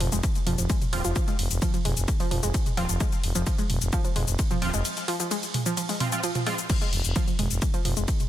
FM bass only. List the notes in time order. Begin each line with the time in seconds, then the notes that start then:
0.00 F1
0.12 F1
0.46 F1
0.58 F1
0.93 D#1
1.04 F1
1.39 F1
1.51 F1
1.85 F1
1.97 F1
2.31 F1
2.43 F1
2.77 D#1
2.89 F1
3.23 F1
3.35 F1
3.70 F1
3.81 F1
4.16 F1
4.28 F1
4.62 D#1
4.74 F1
6.93 F1
7.04 F1
7.39 F1
7.51 F1
7.85 F1
7.97 F1